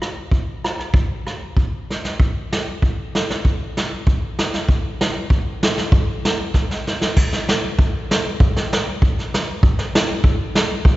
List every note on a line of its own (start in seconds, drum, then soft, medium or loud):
0.02 cross-stick medium
0.31 kick medium
0.64 cross-stick medium
0.79 cross-stick soft
0.94 kick medium
1.27 cross-stick medium
1.57 kick medium
1.90 snare soft
2.05 snare medium
2.20 kick medium
2.52 snare medium
2.82 kick medium
3.15 snare medium
3.30 snare medium
3.45 kick medium
3.77 snare medium
4.07 kick medium
4.39 snare medium
4.54 snare soft
4.69 kick medium
5.01 snare medium
5.30 kick medium
5.63 snare medium
5.77 snare soft
5.92 kick medium
6.25 snare medium
6.54 kick medium
6.54 snare soft
6.71 snare soft
6.87 snare soft
7.01 snare medium
7.17 kick medium
7.17 crash medium
7.33 snare medium
7.49 snare medium
7.49 hi-hat pedal soft
7.79 kick medium
8.11 snare medium
8.11 hi-hat pedal soft
8.40 kick medium
8.56 snare medium
8.73 snare medium
8.73 hi-hat pedal soft
9.02 kick medium
9.19 snare soft
9.34 snare medium
9.34 hi-hat pedal soft
9.63 kick medium
9.79 snare medium
9.95 snare medium
9.95 hi-hat pedal soft
10.24 kick medium
10.55 snare medium
10.55 hi-hat pedal soft
10.85 kick medium